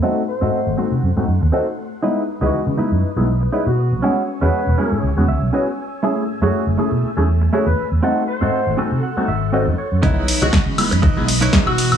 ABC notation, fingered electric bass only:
X:1
M:4/4
L:1/16
Q:"Swing 16ths" 1/4=120
K:C#m
V:1 name="Fingered electric bass" clef=bass
z3 G,, z G,,, z ^B,, F,, G,, F,, D,, z4 | z3 C,, z C, z F,, z B,,,2 z2 B,,2 B,,, | z3 E,, z E,,, z G,, C,, E,, C,, B,,, z4 | z3 F,, z F,,, z B,, z E,,2 z2 E,, z E,, |
z3 G,, z G,,, z ^B,, z2 G,,,3 F,, z F,, | z3 C,, z C, z F,, z B,,,2 z2 B,,2 B,,, |]